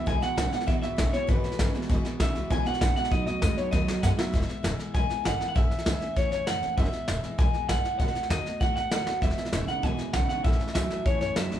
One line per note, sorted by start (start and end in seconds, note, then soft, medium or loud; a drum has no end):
0.06 0.17 C#2 medium
0.06 0.22 E2 medium
0.06 0.21 E2 medium
0.06 0.22 B2 medium
0.06 0.21 B2 loud
0.06 0.22 E3 medium
0.06 0.22 G#3 medium
0.06 0.21 B3 medium
0.06 0.20 E4 medium
0.06 0.22 G#5 loud
0.06 kick loud
0.06 snare soft
0.21 0.36 E2 medium
0.21 0.36 B2 medium
0.21 0.35 E3 soft
0.21 0.36 G#3 soft
0.21 0.37 B3 medium
0.21 0.37 E4 medium
0.21 0.52 F#5 loud
0.21 muted upright bass stroke medium
0.21 snare soft
0.36 0.47 B1 medium
0.36 0.51 E2 medium
0.36 0.51 C#3 loud
0.36 0.52 E3 medium
0.36 0.52 G#3 medium
0.36 0.51 B3 medium
0.36 0.50 E4 medium
0.36 kick medium
0.36 snare loud
0.36 hi-hat pedal medium
0.51 0.66 E2 medium
0.51 0.66 B2 medium
0.51 0.66 E3 soft
0.51 0.66 G#3 medium
0.51 0.66 B3 medium
0.51 0.67 E4 medium
0.51 0.67 F#5 loud
0.51 muted upright bass stroke medium
0.51 snare soft
0.61 snare soft
0.66 0.78 E1 loud
0.66 0.82 E2 medium
0.66 0.81 E2 medium
0.66 0.82 B2 medium
0.66 0.82 B2 loud
0.66 0.83 E3 medium
0.66 0.82 G#3 medium
0.66 0.81 B3 medium
0.66 0.80 E4 medium
0.66 0.72 E5 loud
0.66 kick loud
0.66 snare soft
0.81 0.93 G#1 medium
0.81 0.96 E2 medium
0.81 0.97 B2 medium
0.81 0.95 E3 soft
0.81 0.96 G#3 medium
0.81 0.97 B3 soft
0.81 0.97 E4 medium
0.81 1.14 E5 medium
0.81 snare soft
0.96 1.08 A1 loud
0.96 1.12 E2 medium
0.96 1.12 C#3 loud
0.96 1.13 E3 medium
0.96 1.13 G#3 medium
0.96 1.12 B3 medium
0.96 1.11 E4 medium
0.96 kick medium
0.96 snare loud
0.96 hi-hat pedal medium
1.12 1.27 E2 medium
1.12 1.27 B2 medium
1.12 1.27 E3 soft
1.12 1.28 G#3 medium
1.12 1.28 B3 medium
1.12 1.28 E4 medium
1.12 1.29 C#5 medium
1.12 muted upright bass stroke medium
1.12 snare soft
1.27 1.39 G#1 medium
1.27 1.43 E2 medium
1.27 1.42 E2 medium
1.27 1.44 B2 medium
1.27 1.42 B2 loud
1.27 1.44 E3 medium
1.27 1.43 G#3 medium
1.27 1.43 B3 loud
1.27 1.41 E4 loud
1.27 1.74 B4 medium
1.27 kick loud
1.27 snare soft
1.43 1.57 E2 medium
1.43 1.58 B2 medium
1.43 1.57 E3 soft
1.43 1.58 G#3 medium
1.43 1.59 B3 medium
1.43 1.58 E4 medium
1.43 muted upright bass stroke medium
1.43 snare soft
1.52 snare soft
1.58 1.69 G#1 medium
1.58 1.73 E2 medium
1.58 1.73 C#3 medium
1.58 1.74 E3 medium
1.58 1.75 G#3 medium
1.58 1.74 B3 medium
1.58 1.73 E4 medium
1.58 kick medium
1.58 snare loud
1.58 hi-hat pedal loud
1.74 1.88 E2 medium
1.74 1.88 B2 loud
1.74 1.89 E3 medium
1.74 1.90 G#3 medium
1.74 1.90 B3 medium
1.74 1.89 E4 medium
1.74 muted upright bass stroke medium
1.74 snare soft
1.82 snare soft
1.89 1.99 E1 loud
1.89 2.05 E2 medium
1.89 2.03 E2 medium
1.89 2.03 B2 medium
1.89 2.05 B2 medium
1.89 2.05 E3 medium
1.89 2.05 G#3 loud
1.89 2.05 B3 medium
1.89 2.03 E4 loud
1.89 kick loud
1.89 snare soft
2.05 2.18 E2 medium
2.05 2.19 B2 loud
2.05 2.18 E3 medium
2.05 2.20 G#3 medium
2.05 2.21 B3 medium
2.05 2.20 E4 medium
2.05 muted upright bass stroke medium
2.05 snare soft
2.20 2.30 B1 loud
2.20 2.34 E2 medium
2.20 2.34 C#3 medium
2.20 2.35 E3 medium
2.20 2.36 G#3 medium
2.20 2.35 B3 medium
2.20 2.34 E4 medium
2.20 2.51 E5 loud
2.20 kick loud
2.20 snare loud
2.20 hi-hat pedal loud
2.35 2.45 C#2 medium
2.35 2.49 E2 medium
2.35 2.49 B2 medium
2.35 2.50 E3 soft
2.35 2.50 G#3 medium
2.35 2.51 B3 medium
2.35 2.50 E4 medium
2.35 snare soft
2.50 2.60 C#2 loud
2.50 2.66 E2 medium
2.50 2.64 E2 loud
2.50 2.64 B2 loud
2.50 2.66 B2 medium
2.50 2.66 E3 medium
2.50 2.66 G#3 medium
2.50 2.65 B3 medium
2.50 2.63 E4 loud
2.50 2.66 G#5 loud
2.50 kick loud
2.50 snare soft
2.65 2.79 E2 medium
2.65 2.80 B2 loud
2.65 2.78 E3 soft
2.65 2.80 G#3 medium
2.65 2.81 B3 medium
2.65 2.80 E4 medium
2.65 2.80 F#5 medium
2.65 muted upright bass stroke medium
2.65 snare soft
2.74 snare soft
2.80 2.91 A1 medium
2.80 2.94 E2 medium
2.80 2.95 C#3 medium
2.80 2.96 E3 medium
2.80 2.96 G#3 medium
2.80 2.95 B3 medium
2.80 2.94 E4 medium
2.80 2.95 F#5 loud
2.80 kick loud
2.80 snare loud
2.80 hi-hat pedal medium
2.95 3.09 E2 medium
2.95 3.09 B2 medium
2.95 3.11 E3 soft
2.95 3.12 G#3 soft
2.95 3.11 B3 medium
2.95 3.11 E4 medium
2.95 3.11 F#5 loud
2.95 muted upright bass stroke medium
2.95 snare soft
3.04 snare soft
3.10 3.21 B1 loud
3.10 3.26 B2 medium
3.10 3.25 B2 medium
3.10 3.27 D#3 medium
3.10 3.25 F#3 medium
3.10 3.27 A3 medium
3.10 3.26 B3 medium
3.10 3.25 F#4 medium
3.10 3.25 D#5 loud
3.10 kick loud
3.10 snare soft
3.26 3.36 D#2 medium
3.26 3.40 B2 medium
3.26 3.40 F#3 medium
3.26 3.41 A3 soft
3.26 3.42 B3 medium
3.26 3.42 F#4 medium
3.26 3.41 D#5 medium
3.26 snare soft
3.41 3.52 E2 loud
3.41 3.56 B2 medium
3.41 3.57 D#3 medium
3.41 3.56 G#3 medium
3.41 3.57 A3 medium
3.41 3.57 B3 medium
3.41 3.55 F#4 medium
3.41 3.57 D#5 medium
3.41 kick medium
3.41 snare loud
3.41 hi-hat pedal medium
3.56 3.71 B2 medium
3.56 3.71 F#3 medium
3.56 3.72 A3 medium
3.56 3.72 B3 medium
3.56 3.72 F#4 medium
3.56 3.71 C#5 medium
3.56 muted upright bass stroke medium
3.56 snare soft
3.71 3.82 D#2 medium
3.71 3.87 B2 medium
3.71 3.86 B2 medium
3.71 3.88 D#3 medium
3.71 3.86 F#3 medium
3.71 3.88 A3 medium
3.71 3.87 B3 medium
3.71 3.86 F#4 medium
3.71 4.14 D#5 medium
3.71 kick loud
3.71 snare medium
3.87 4.01 B2 medium
3.87 4.01 F#3 medium
3.87 4.02 A3 soft
3.87 4.03 B3 soft
3.87 4.02 F#4 medium
3.87 muted upright bass stroke medium
3.87 snare medium
4.02 4.13 F#2 medium
4.02 4.17 B2 medium
4.02 4.18 D#3 medium
4.02 4.17 G#3 medium
4.02 4.18 A3 medium
4.02 4.17 B3 medium
4.02 4.15 F#4 medium
4.02 4.08 F#5 loud
4.02 kick medium
4.02 snare loud
4.02 hi-hat pedal loud
4.17 4.32 B2 medium
4.17 4.32 F#3 medium
4.17 4.33 A3 medium
4.17 4.33 B3 medium
4.17 4.33 F#4 medium
4.17 4.94 E5 loud
4.17 muted upright bass stroke medium
4.17 snare loud
4.33 4.45 E1 loud
4.33 4.48 E2 medium
4.33 4.49 B2 medium
4.33 4.49 E3 medium
4.33 4.49 G#3 medium
4.33 4.48 B3 medium
4.33 4.47 E4 medium
4.33 kick loud
4.33 snare soft
4.42 snare soft
4.48 4.62 E3 soft
4.48 4.63 G#3 soft
4.48 4.64 B3 soft
4.48 4.64 E4 medium
4.48 muted upright bass stroke medium
4.48 snare soft
4.63 4.75 E1 loud
4.63 4.79 E3 medium
4.63 4.79 G#3 medium
4.63 4.79 B3 medium
4.63 4.77 E4 medium
4.63 snare loud
4.63 hi-hat pedal medium
4.79 4.94 E3 medium
4.79 4.94 G#3 medium
4.79 4.94 B3 medium
4.79 4.94 E4 medium
4.79 muted upright bass stroke medium
4.79 snare soft
4.94 5.06 B1 loud
4.94 5.09 E2 medium
4.94 5.10 B2 medium
4.94 5.10 E3 medium
4.94 5.10 G#3 medium
4.94 5.09 B3 medium
4.94 5.08 E4 loud
4.94 5.25 G#5 loud
4.94 kick loud
4.94 snare soft
5.09 5.23 E3 soft
5.09 5.24 G#3 medium
5.09 5.25 B3 medium
5.09 5.25 E4 medium
5.09 muted upright bass stroke medium
5.09 snare soft
5.24 5.36 G#1 medium
5.24 5.40 E3 medium
5.24 5.40 G#3 medium
5.24 5.40 B3 medium
5.24 5.38 E4 medium
5.24 5.47 F#5 medium
5.24 snare loud
5.24 hi-hat pedal medium
5.39 5.54 E3 soft
5.39 5.56 G#3 soft
5.39 5.56 B3 medium
5.39 5.55 E4 medium
5.39 muted upright bass stroke medium
5.39 snare soft
5.49 5.55 F#5 medium
5.55 5.67 A1 loud
5.55 5.70 A2 medium
5.55 5.71 E3 medium
5.55 5.71 A3 medium
5.55 5.70 C#4 loud
5.55 5.69 E4 medium
5.55 5.84 E5 loud
5.55 kick loud
5.55 snare soft
5.70 5.85 A3 soft
5.70 5.86 C#4 medium
5.70 5.85 E4 medium
5.70 muted upright bass stroke medium
5.70 snare soft
5.78 snare soft
5.86 5.97 C#2 loud
5.86 6.01 E3 medium
5.86 6.01 A3 medium
5.86 6.01 C#4 medium
5.86 5.99 E4 medium
5.86 6.14 E5 loud
5.86 snare loud
5.86 hi-hat pedal loud
6.00 6.16 A3 soft
6.00 6.16 C#4 medium
6.00 6.16 E4 medium
6.00 muted upright bass stroke medium
6.00 snare soft
6.16 6.28 E2 medium
6.16 6.32 A2 medium
6.16 6.32 E3 medium
6.16 6.32 A3 medium
6.16 6.32 C#4 loud
6.16 6.30 E4 medium
6.16 6.31 C#5 medium
6.16 kick loud
6.16 snare soft
6.31 6.43 F#2 loud
6.31 6.46 A3 soft
6.31 6.47 C#4 soft
6.31 6.46 E4 medium
6.31 6.48 C#5 medium
6.31 snare soft
6.46 6.58 F#2 medium
6.46 6.62 E3 medium
6.46 6.62 A3 medium
6.46 6.62 C#4 medium
6.46 6.60 E4 medium
6.46 6.77 F#5 loud
6.46 snare loud
6.46 hi-hat pedal medium
6.61 6.74 F#1 loud
6.61 6.78 A3 soft
6.61 6.78 C#4 medium
6.61 6.77 E4 medium
6.61 snare soft
6.77 6.89 E1 loud
6.77 6.93 E2 medium
6.77 6.93 B2 medium
6.77 6.93 E3 medium
6.77 6.93 G#3 medium
6.77 6.92 B3 medium
6.77 6.91 E4 medium
6.77 7.38 E5 loud
6.77 kick loud
6.77 snare soft
6.85 snare soft
6.92 7.07 E3 soft
6.92 7.08 G#3 soft
6.92 7.08 B3 soft
6.92 7.08 E4 medium
6.92 muted upright bass stroke medium
6.92 snare soft
7.08 7.20 E1 loud
7.08 7.23 E3 medium
7.08 7.24 G#3 medium
7.08 7.23 B3 medium
7.08 7.22 E4 medium
7.08 snare loud
7.08 hi-hat pedal medium
7.23 7.38 E3 medium
7.23 7.39 G#3 medium
7.23 7.39 B3 medium
7.23 7.38 E4 medium
7.23 muted upright bass stroke medium
7.23 snare soft
7.38 7.50 B1 loud
7.38 7.54 E2 medium
7.38 7.54 B2 medium
7.38 7.54 E3 medium
7.38 7.54 G#3 medium
7.38 7.54 B3 medium
7.38 7.52 E4 medium
7.38 7.68 G#5 loud
7.38 kick loud
7.38 snare soft
7.53 7.68 E3 medium
7.53 7.69 G#3 medium
7.53 7.70 B3 medium
7.53 7.69 E4 medium
7.53 muted upright bass stroke medium
7.53 snare soft
7.68 7.80 A1 medium
7.68 7.84 E3 medium
7.68 7.84 G#3 medium
7.68 7.84 B3 medium
7.68 7.82 E4 medium
7.68 7.98 F#5 loud
7.68 snare loud
7.68 hi-hat pedal medium
7.84 8.00 E3 soft
7.84 8.00 G#3 soft
7.84 8.00 B3 soft
7.84 7.99 E4 medium
7.84 muted upright bass stroke medium
7.84 snare soft
7.99 8.11 B1 medium
7.99 8.15 B2 medium
7.99 8.15 D#3 medium
7.99 8.15 A3 medium
7.99 8.15 B3 medium
7.99 8.13 F#4 medium
7.99 8.28 F#5 loud
7.99 kick loud
7.99 snare soft
8.08 snare soft
8.14 8.29 A3 soft
8.14 8.30 B3 medium
8.14 8.30 F#4 soft
8.14 muted upright bass stroke medium
8.14 snare soft
8.23 snare soft
8.29 8.41 D#2 loud
8.29 8.45 D#3 medium
8.29 8.46 A3 medium
8.29 8.45 B3 medium
8.29 8.43 F#4 medium
8.29 8.59 D#5 loud
8.29 snare loud
8.29 hi-hat pedal medium
8.44 8.60 A3 soft
8.44 8.60 B3 soft
8.44 8.60 F#4 medium
8.44 muted upright bass stroke medium
8.44 snare soft
8.60 8.72 F#2 loud
8.60 8.76 B2 medium
8.60 8.76 D#3 medium
8.60 8.76 A3 medium
8.60 8.76 B3 medium
8.60 8.74 F#4 medium
8.60 8.75 F#5 loud
8.60 kick loud
8.60 snare soft
8.75 8.87 G#2 loud
8.75 8.91 A3 soft
8.75 8.92 B3 medium
8.75 8.91 F#4 soft
8.75 8.91 F#5 loud
8.75 snare soft
8.91 9.03 A2 medium
8.91 9.06 D#3 medium
8.91 9.07 A3 medium
8.91 9.07 B3 medium
8.91 9.05 F#4 medium
8.91 9.20 F#5 loud
8.91 snare loud
8.91 hi-hat pedal loud
9.06 9.18 D#2 medium
9.06 9.23 A3 soft
9.06 9.23 B3 soft
9.06 9.22 F#4 soft
9.06 snare medium
9.22 9.34 E1 loud
9.22 9.37 E2 medium
9.22 9.50 E2 medium
9.22 9.50 B2 medium
9.22 9.38 B2 medium
9.22 9.38 E3 medium
9.22 9.38 G#3 medium
9.22 9.37 B3 medium
9.22 9.36 E4 medium
9.22 9.68 E5 loud
9.22 kick loud
9.22 snare soft
9.30 snare soft
9.37 9.51 E3 soft
9.37 9.52 G#3 soft
9.37 9.53 B3 medium
9.37 9.53 E4 medium
9.37 muted upright bass stroke medium
9.37 snare soft
9.45 snare soft
9.52 9.64 E1 loud
9.52 9.66 E2 medium
9.52 9.67 C#3 medium
9.52 9.68 E3 medium
9.52 9.68 G#3 medium
9.52 9.67 B3 medium
9.52 9.66 E4 medium
9.52 snare loud
9.52 hi-hat pedal medium
9.67 9.81 E2 medium
9.67 9.82 C#3 medium
9.67 9.82 E3 soft
9.67 9.82 G#3 soft
9.67 9.83 B3 medium
9.67 9.83 E4 medium
9.67 9.84 F#5 medium
9.67 muted upright bass stroke medium
9.67 snare soft
9.82 9.95 B1 medium
9.82 9.98 E2 medium
9.82 10.11 E2 loud
9.82 9.99 B2 medium
9.82 10.11 B2 loud
9.82 9.99 E3 medium
9.82 9.98 G#3 loud
9.82 9.98 B3 medium
9.82 9.96 E4 medium
9.82 10.13 G#5 loud
9.82 kick loud
9.82 snare soft
9.97 10.12 E3 soft
9.97 10.13 G#3 soft
9.97 10.14 B3 medium
9.97 10.13 E4 medium
9.97 muted upright bass stroke medium
9.97 snare soft
10.13 10.25 B1 medium
10.13 10.28 E2 medium
10.13 10.28 C#3 loud
10.13 10.29 E3 medium
10.13 10.30 G#3 medium
10.13 10.29 B3 medium
10.13 10.28 E4 medium
10.13 10.28 F#5 medium
10.13 snare loud
10.13 hi-hat pedal medium
10.29 10.43 E2 medium
10.29 10.43 C#3 loud
10.29 10.44 E3 soft
10.29 10.45 G#3 medium
10.29 10.45 B3 soft
10.29 10.44 E4 medium
10.29 10.44 F#5 loud
10.29 muted upright bass stroke medium
10.29 snare soft
10.44 10.56 A1 medium
10.44 10.72 A2 medium
10.44 10.60 A2 medium
10.44 10.72 E3 loud
10.44 10.60 E3 medium
10.44 10.60 A3 medium
10.44 10.61 C#4 medium
10.44 10.59 E4 medium
10.44 10.73 E5 loud
10.44 kick loud
10.44 snare soft
10.52 snare soft
10.60 10.74 A3 soft
10.60 10.75 C#4 medium
10.60 10.75 E4 medium
10.60 muted upright bass stroke medium
10.60 snare soft
10.68 snare soft
10.74 10.87 C#2 loud
10.74 10.89 A2 medium
10.74 10.90 E3 medium
10.74 10.89 F#3 medium
10.74 10.91 A3 medium
10.74 10.90 C#4 medium
10.74 10.89 E4 medium
10.74 11.03 E5 medium
10.74 snare loud
10.74 hi-hat pedal loud
10.90 11.04 A2 medium
10.90 11.04 F#3 medium
10.90 11.06 A3 medium
10.90 11.06 C#4 medium
10.90 11.06 E4 medium
10.90 muted upright bass stroke medium
10.90 snare soft
11.05 11.17 E2 medium
11.05 11.21 A2 medium
11.05 11.33 A2 medium
11.05 11.21 E3 medium
11.05 11.34 E3 loud
11.05 11.22 A3 medium
11.05 11.21 C#4 medium
11.05 11.19 E4 medium
11.05 11.20 C#5 loud
11.05 kick loud
11.05 snare soft
11.20 11.33 F#2 medium
11.20 11.36 A3 soft
11.20 11.37 C#4 soft
11.20 11.36 E4 medium
11.20 11.36 C#5 medium
11.20 snare soft
11.36 11.48 F#2 medium
11.36 11.50 A2 medium
11.36 11.50 F#3 loud
11.36 11.52 A3 medium
11.36 11.52 C#4 medium
11.36 11.50 E4 medium
11.36 11.60 E5 loud
11.36 snare loud
11.36 hi-hat pedal medium
11.51 11.60 A#1 medium
11.51 11.60 A2 medium
11.51 11.60 F#3 medium
11.51 11.60 A3 soft
11.51 11.60 C#4 medium
11.51 11.60 E4 medium
11.51 snare soft